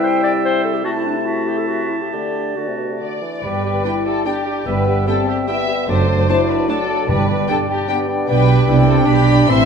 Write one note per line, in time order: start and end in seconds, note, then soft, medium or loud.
0.00 1.96 C3 medium
0.00 0.81 G3 medium
0.00 0.81 E4 medium
0.00 0.23 C5 medium
0.00 0.86 E5 medium
0.00 0.61 G5 medium
0.24 0.33 D5 medium
0.45 0.64 C5 medium
0.64 0.76 A4 medium
0.74 0.84 G4 soft
0.84 1.95 A3 medium
0.84 1.95 E4 medium
0.84 0.89 F#4 medium
0.84 3.22 A5 medium
0.84 1.26 A5 medium
0.96 1.04 E4 medium
1.05 1.18 D4 medium
1.16 1.27 E4 medium
1.26 1.49 F#4 medium
1.26 2.11 E5 medium
1.47 1.59 G4 medium
1.58 1.69 A4 medium
1.67 1.91 F#4 medium
1.90 2.03 E4 medium
2.01 2.11 G4 soft
2.11 2.52 D3 soft
2.11 2.55 A3 soft
2.11 2.56 D4 soft
2.11 2.57 G4 soft
2.11 3.22 D5 soft
2.56 2.70 D3 medium
2.56 3.21 A3 soft
2.56 3.21 D4 soft
2.56 3.22 F#4 soft
2.69 2.80 C3 soft
2.78 2.91 B2 soft
2.90 3.00 C3 soft
3.00 3.21 D3 soft
3.00 3.40 D5 medium
3.22 3.43 E3 soft
3.43 3.78 G1 soft
3.43 3.78 G2 soft
3.43 3.64 G3 soft
3.43 3.64 G4 soft
3.43 4.05 B4 medium
3.43 3.64 D5 soft
3.43 3.63 G5 soft
3.64 3.84 G3 soft
3.64 3.85 G4 soft
3.64 3.84 D5 soft
3.64 3.84 G5 soft
3.85 4.05 G3 soft
3.85 3.93 B3 soft
3.85 3.93 D4 soft
3.85 4.23 E4 soft
3.85 4.05 G4 soft
3.85 4.04 D5 soft
3.85 3.93 G5 soft
3.85 4.05 G5 soft
4.05 4.25 G3 soft
4.05 4.25 G4 soft
4.05 4.25 A4 medium
4.05 4.25 D5 soft
4.05 4.25 G5 soft
4.25 4.46 G3 soft
4.25 4.34 B3 soft
4.25 4.66 D4 soft
4.25 4.33 D4 soft
4.25 4.46 G4 soft
4.25 4.66 G4 medium
4.25 4.46 D5 soft
4.25 4.34 G5 soft
4.25 4.46 G5 soft
4.46 4.66 G3 soft
4.46 4.66 G4 soft
4.46 4.65 D5 soft
4.46 4.66 G5 soft
4.66 5.01 G1 medium
4.66 5.00 G2 medium
4.66 4.86 G3 soft
4.66 5.06 B3 medium
4.66 4.86 G4 soft
4.66 5.07 B4 medium
4.66 4.85 E5 soft
4.66 4.86 G5 soft
4.86 5.07 G3 soft
4.86 5.07 G4 soft
4.86 5.06 E5 soft
4.86 5.06 G5 soft
5.07 5.27 G3 soft
5.07 5.15 B3 soft
5.07 5.48 C4 soft
5.07 5.15 E4 soft
5.07 5.27 G4 soft
5.07 5.27 A4 medium
5.07 5.27 E5 soft
5.07 5.15 G5 soft
5.07 5.27 G5 soft
5.27 5.47 G3 soft
5.27 5.47 G4 soft
5.27 5.36 G4 medium
5.27 5.47 E5 soft
5.27 5.48 G5 soft
5.47 5.67 G3 soft
5.47 5.87 B3 medium
5.47 5.56 B3 soft
5.47 5.56 E4 soft
5.47 5.68 G4 soft
5.47 5.87 E5 medium
5.47 5.67 E5 soft
5.47 5.56 G5 soft
5.47 5.67 G5 soft
5.68 5.87 G3 soft
5.68 5.87 G4 soft
5.68 5.87 E5 soft
5.68 5.88 G5 soft
5.87 6.22 F#1 medium
5.87 6.21 F#2 medium
5.87 6.07 F#3 soft
5.87 6.28 A3 soft
5.87 6.07 D4 soft
5.87 6.47 C5 medium
5.87 6.08 D5 soft
5.87 6.07 A5 soft
6.08 6.28 F#3 soft
6.08 6.28 D4 soft
6.08 6.28 D5 soft
6.08 6.27 A5 soft
6.28 6.48 F#3 soft
6.28 6.36 A3 soft
6.28 6.36 D4 soft
6.28 6.48 D4 soft
6.28 6.67 E4 medium
6.28 6.48 D5 soft
6.28 6.47 A5 soft
6.28 6.37 A5 soft
6.48 6.68 F#3 soft
6.48 6.68 D4 soft
6.48 6.69 B4 medium
6.48 6.68 D5 soft
6.48 6.67 A5 soft
6.68 6.88 F#3 soft
6.68 6.77 A3 soft
6.68 6.76 D4 soft
6.68 6.88 D4 soft
6.68 7.89 D4 medium
6.68 7.08 A4 medium
6.68 6.88 D5 soft
6.68 6.88 A5 soft
6.68 6.77 A5 soft
6.88 7.08 F#3 soft
6.88 7.08 D4 soft
6.88 7.09 D5 soft
6.88 7.08 A5 soft
7.09 7.42 G1 medium
7.09 7.42 G2 medium
7.09 7.65 G2 medium
7.09 7.28 G3 medium
7.09 7.28 D4 soft
7.09 7.48 B4 medium
7.09 7.28 D5 medium
7.09 7.28 G5 medium
7.29 7.48 G3 soft
7.29 7.48 D4 soft
7.29 7.48 D5 soft
7.29 7.48 G5 soft
7.49 7.68 G3 medium
7.49 7.57 B3 soft
7.49 7.68 D4 soft
7.49 7.57 D4 soft
7.49 7.57 A4 medium
7.49 7.69 D5 soft
7.49 7.57 G5 soft
7.49 7.68 G5 soft
7.69 7.88 G3 medium
7.69 7.87 D4 soft
7.69 7.89 G4 medium
7.69 7.89 D5 soft
7.69 7.88 G5 soft
7.88 8.08 G3 soft
7.88 8.68 B3 medium
7.88 7.97 B3 soft
7.88 8.07 D4 soft
7.88 7.97 D4 soft
7.88 8.08 D5 soft
7.88 7.97 G5 soft
7.88 8.08 G5 soft
8.08 8.28 G3 soft
8.08 8.28 D4 soft
8.08 8.28 D5 soft
8.08 8.27 G5 soft
8.28 8.66 B1 medium
8.28 8.65 B2 medium
8.28 9.32 G3 medium
8.28 8.66 D4 medium
8.28 9.45 D4 medium
8.28 8.84 B4 medium
8.28 9.51 D5 medium
8.28 9.45 G5 medium
8.28 8.66 G5 medium
8.68 9.07 C2 medium
8.68 9.07 C3 medium
8.68 8.88 B3 medium
8.68 9.47 D4 medium
8.68 9.08 E4 medium
8.68 9.07 G5 soft
8.87 9.07 C4 medium
8.87 8.96 A4 medium
9.06 9.48 B1 medium
9.06 9.48 B2 medium
9.06 9.26 D4 medium
9.06 9.48 G4 medium
9.06 9.49 B5 medium
9.28 9.48 D4 medium
9.48 9.65 A1 medium
9.48 9.65 A2 medium
9.48 9.65 E3 medium
9.48 9.65 C4 medium
9.48 9.65 E4 medium
9.48 9.65 E5 medium
9.48 9.65 A5 medium
9.48 9.65 C6 medium